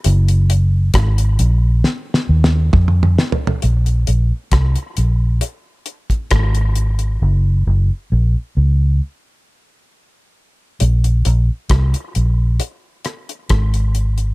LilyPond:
<<
  \new Staff \with { instrumentName = "Fingered electric bass" } { \clef bass \time 4/4 \key bes \minor \tempo 4 = 67 ges,,4 aes,,8 bes,,8 r8 ees,8 f,8 r8 | bes,,8 bes,,16 r16 c,16 r16 bes,,8 r4 aes,,4 | ges,,8 ges,,16 r16 bes,,16 r16 des,8 r2 | bes,,8 bes,,16 r16 c,16 r16 bes,,8 r4 aes,,4 | }
  \new DrumStaff \with { instrumentName = "Drums" } \drummode { \time 4/4 hh16 hh16 hh8 <hh bd ss>16 hh16 hh8 \tuplet 3/2 { sn8 sn8 sn8 <bd toml>16 toml16 toml16 sn16 tomfh16 tomfh16 } | hh16 hh16 hh8 <hh bd ss>16 hh16 hh8 hh8 hh16 <hh bd>16 <hh bd ss>16 hh16 hh16 hh16 | r4 r4 r4 r4 | hh16 hh16 hh8 <hh bd ss>16 hh16 hh8 hh8 <hh ss>16 hh16 <hh bd ss>16 hh16 hh16 hh16 | }
>>